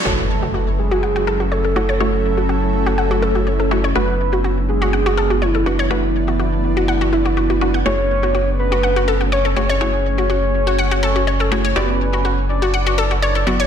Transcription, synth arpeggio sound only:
X:1
M:4/4
L:1/16
Q:1/4=123
K:F#m
V:1 name="Synth arpeggio sound"
F z2 F F z2 F f F A F c A F c | F z2 F F z2 F f F A F c A F c | F z2 F F z2 F f F A F c A F c | F z2 F F z2 F f F E F F F F f |
F z2 F F z2 F f F A F c A F c | F z2 F F z2 F f F A F c A F c | F z2 F F z2 F f F A F c A F c |]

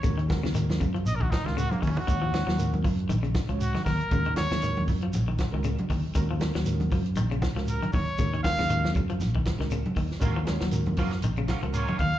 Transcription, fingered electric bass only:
X:1
M:4/4
L:1/16
Q:"Swing 16ths" 1/4=118
K:Ebm
V:1 name="Fingered electric bass" clef=bass
E,,3 E,,3 G,,2 B,,,2 z D,,2 z E,, z | E,,3 E,,3 G,,2 B,,,2 z D,,2 z E,, z | E,,3 E,,3 G,,2 B,,,2 z D,,2 z E,, z | E,,3 E,,3 G,,2 B,,,2 z D,,2 z E,, z |
E,,3 E,,3 G,,2 B,,,2 z D,,2 z E,, z | E,,3 E,,3 G,,2 B,,,2 z D,,2 z E,, z |]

